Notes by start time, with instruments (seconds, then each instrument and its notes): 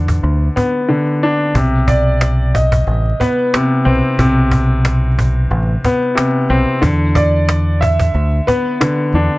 Already playing: fingered electric bass E2, grand piano D3 B3 D4
0.08 cajon bass
0.23 fingered electric bass D2
0.56 grand piano B3, cajon bass
0.88 grand piano D3
1.23 grand piano D4
1.55 fingered electric bass B1, grand piano C3, cajon bass
1.88 upright piano D5, cajon bass
2.21 cajon slap
2.55 upright piano D#5, cajon bass
2.72 cajon bass
2.87 fingered electric bass A1, cajon slap
3.20 grand piano B3, upright piano B4, cajon bass
3.39 cajon slap
3.54 grand piano C3, cajon slap
3.85 fingered electric bass B1, grand piano C4, cajon slap
4.19 fingered electric bass B1, grand piano C3, cajon bass
4.52 cajon bass
4.85 cajon slap
5.19 cajon bass
5.51 fingered electric bass A1, cajon slap
5.85 grand piano B3, cajon bass
6.03 cajon slap
6.15 grand piano C3, cajon slap
6.49 fingered electric bass B1, grand piano C4, cajon slap
6.82 fingered electric bass E2, grand piano D3, cajon bass
7.15 upright piano D5, cajon bass
7.49 cajon slap
7.81 upright piano E5, cajon bass
8.00 cajon bass
8.14 fingered electric bass D2, cajon slap
8.47 grand piano B3, upright piano B4, cajon bass
8.66 cajon slap
8.80 grand piano D3, cajon slap
9.12 fingered electric bass E2, grand piano D4, cajon slap